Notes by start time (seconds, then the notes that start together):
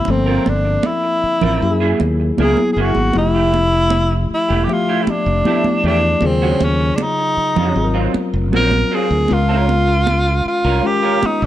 Already playing: E4
0.05 G1 F3 A3 C4, muted clean electric guitar stroke, muted conga
0.10 C4 A4
0.14 A#3
0.26 C4 F4 A#4
0.46 G1 D4, muted clean electric guitar stroke, muted conga
0.65 muted clean electric guitar stroke
0.83 E4, muted clean electric guitar stroke, high conga
1.04 muted clean electric guitar stroke
1.24 muted fingered electric bass stroke
1.41 A1 C4 F4 A#4, low conga
1.61 F#2 F#3 A#3 E4 G4, muted clean electric guitar stroke
1.70 G#4
1.80 A#3 E4 G#4
2.00 D#2, muted clean electric guitar stroke, muted conga
2.20 muted clean electric guitar stroke
2.37 C#2 F#3 A#3 E4 G#4 A#4, high conga
2.41 G#4
2.57 muted clean electric guitar stroke, high conga
2.73 F#1 G#4
2.77 A#3 E4 F#4 G#4
2.95 G#1, muted clean electric guitar stroke, high conga
3.13 F1 F3 A3 E4 G4, muted clean electric guitar stroke, muted conga
3.18 E4
3.34 A3 E4 G4
3.54 muted clean electric guitar stroke, muted conga
3.73 muted clean electric guitar stroke
3.90 muted clean electric guitar stroke, high conga
4.11 muted clean electric guitar stroke
4.30 E4, muted fingered electric bass stroke
4.49 E1 A3 E4 G4
4.65 F3 A3 G4
4.69 G4 E5, muted clean electric guitar stroke, muted conga
4.73 F4
4.89 A3 E4 G4
5.03 E4, muted fingered electric bass stroke, muted conga
5.07 D4, muted clean electric guitar stroke
5.26 F1, muted clean electric guitar stroke
5.44 F3 A3 E4 G4 A4, high conga
5.64 muted clean electric guitar stroke, high conga
5.84 E2 A3 E4 G4
5.88 D4
6.04 muted clean electric guitar stroke
6.21 D#2 C#3 F#3 F4 G#4, muted clean electric guitar stroke, muted conga
6.26 C4
6.42 G#3 C#4 F#4
6.60 D#2, muted clean electric guitar stroke, muted conga
6.65 C#4
6.81 muted clean electric guitar stroke
6.95 D4, high conga
6.99 D#4, muted clean electric guitar stroke
7.18 muted clean electric guitar stroke
7.37 muted fingered electric bass stroke
7.56 F2 G#3 C#4 F#4, low conga
7.74 G#1 F#3 C4 F4 G#4, muted clean electric guitar stroke
7.84 A#4
7.94 F#3 C4 F4
8.14 muted clean electric guitar stroke, muted fingered electric bass stroke, muted conga
8.34 F1, muted clean electric guitar stroke
8.51 A#1 F#3 C4 F4 F#4 A#4, high conga
8.56 A#4
8.71 muted clean electric guitar stroke, high conga
8.91 F#3 C4 F4 G#4
9.11 D2, muted clean electric guitar stroke
9.28 C#2 G#3 C#4 F4 A#4, muted clean electric guitar stroke, muted conga
9.33 F4
9.48 C#4 F4 A#4
9.67 muted clean electric guitar stroke, muted conga
9.88 muted clean electric guitar stroke
10.07 muted clean electric guitar stroke, high conga
10.27 muted clean electric guitar stroke
10.46 F4, muted fingered electric bass stroke
10.64 C2 C#4 F4 A#4
10.83 G#3 C#4 F4 G4 A#4, muted clean electric guitar stroke
11.03 C#4 F4 A#4
11.21 muted clean electric guitar stroke, muted fingered electric bass stroke, muted conga
11.26 D#4
11.41 A#1, muted clean electric guitar stroke